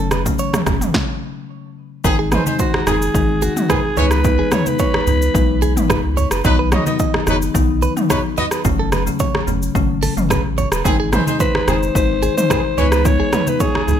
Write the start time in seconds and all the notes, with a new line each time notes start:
Already playing: F#1
0.11 B4, cross-stick, high conga, shaker
0.26 C#3 F#3 A3 C#4, kick, high conga, shaker
0.39 C#5, shaker
0.53 cross-stick, mid tom, high conga, shaker
0.66 F#1 C#3 F#3 A3 C#4, kick, cross-stick, high conga, low conga, shaker
0.81 mid tom, shaker
0.94 kick, snare
2.04 G#1 D#3 G#3 C4 D#4 G#4, kick, low conga, shaker
2.19 G#4
2.32 G#3 D#4 B4 C5, cross-stick, mid tom, high conga, shaker
2.46 D#3 G#3 C4 D#4 C5, high conga, shaker
2.59 F#4 C5, kick, shaker
2.74 cross-stick, high conga
2.87 F#1 D#3 G#3 C4 D#4 G#4, cross-stick, high conga, low conga, shaker
3.02 shaker
3.14 G#1 D#3 G#3 C4 D#4, kick, shaker
3.42 F#4 G#4, high conga, shaker
3.56 D#3 G#3 C4 D#4, mid tom, shaker
3.69 D#3 C4 G#4 B4, kick, cross-stick, low conga, shaker
3.97 C#2 E3 G#3 B3 D#4 E4 B4 C#5, high conga, low conga, shaker
4.11 B4, cross-stick, shaker
4.24 E3 G#3 B3 D#4, kick, low conga, shaker
4.39 G#4
4.52 B4 C#5, cross-stick, mid tom, high conga, shaker
4.66 E3 G#3 B3 D#4 B4, high conga, shaker
4.79 C#5, kick, shaker
4.94 cross-stick, high conga
5.07 C#2 E3 G#3 B3 D#4, high conga, low conga, shaker
5.22 shaker
5.34 B1 E3 G#3 B3 D#4, kick, shaker
5.62 G#4, high conga, shaker
5.76 G#1 E3 G#3 B3 D#4, mid tom, shaker
5.90 B4, kick, cross-stick, low conga, shaker
6.04 C#2
6.17 C#5, high conga, low conga, shaker
6.31 F#1 B4, cross-stick, shaker
6.44 B1 D#3 F#3 B3 D#4 B4, kick, low conga, shaker
6.59 B4
6.72 B3 F#4 C#5 D#5, cross-stick, mid tom, high conga, shaker
6.86 D#3 F#3 B3 D#4 F#4 D#5, high conga, shaker
6.99 D#5, kick, shaker
7.14 cross-stick, high conga
7.27 F#1 D#3 F#3 B3 D#4 B4, cross-stick, high conga, low conga, shaker
7.42 shaker
7.54 B1 D#3 F#3 B3 D#4, kick, shaker
7.82 B4, high conga, shaker
7.96 D#3 F#3 B3 D#4, mid tom, shaker
8.10 F#3 D#4 B4 C#5, kick, cross-stick, low conga, shaker
8.37 B3 F#4 D#5, high conga, low conga, shaker
8.51 B4, cross-stick, shaker
8.65 F#1 C#3 F#3 A3 C#4, kick, low conga, shaker
8.79 A4
8.92 B4, cross-stick, high conga, shaker
9.07 C#3 F#3 A3 C#4, high conga, shaker
9.19 C#5, kick, shaker
9.35 cross-stick, high conga
9.47 F#1 C#3 F#3 A3 C#4, high conga, low conga, shaker
9.62 shaker
9.75 G#1 C#3 F#3 A3 C#4, kick, shaker
10.03 A4, open hi-hat, high conga, shaker
10.17 F#1 C#3 F#3 A3 C#4, mid tom, shaker
10.30 B4, kick, cross-stick, low conga, shaker
10.45 A1
10.58 C#5, high conga, low conga, shaker
10.72 D#1 B4, cross-stick, shaker
10.85 G#1 D#3 G#3 C4 D#4 G#4, kick, low conga, shaker
11.00 G#4
11.12 G#3 D#4 B4 C5, cross-stick, mid tom, high conga, shaker
11.27 D#3 G#3 C4 D#4 C5, high conga, shaker
11.40 B4 C5, kick, shaker
11.55 cross-stick, high conga
11.67 F#1 D#3 G#3 C4 D#4 G#4 C5, cross-stick, high conga, low conga, shaker
11.83 shaker
11.95 G#1 D#3 G#3 C4 D#4 C5, kick, shaker
12.23 G#4, high conga, shaker
12.37 D#3 G#3 C4 D#4 C5, mid tom, shaker
12.50 D#3 C4 G#4 B4, kick, cross-stick, low conga, shaker
12.78 C#2 E3 G#3 B3 D#4 E4 B4 C#5, high conga, low conga, shaker
12.92 B4, cross-stick, shaker
13.05 E3 G#3 B3 D#4 C#5, kick, low conga, shaker
13.20 G#4
13.33 B4, cross-stick, mid tom, high conga, shaker
13.47 E3 G#3 B3 D#4 B4, high conga, shaker
13.60 G#4 C#5, kick, shaker
13.75 cross-stick, high conga
13.88 C#2 E3 G#3 B3 D#4, high conga, low conga, shaker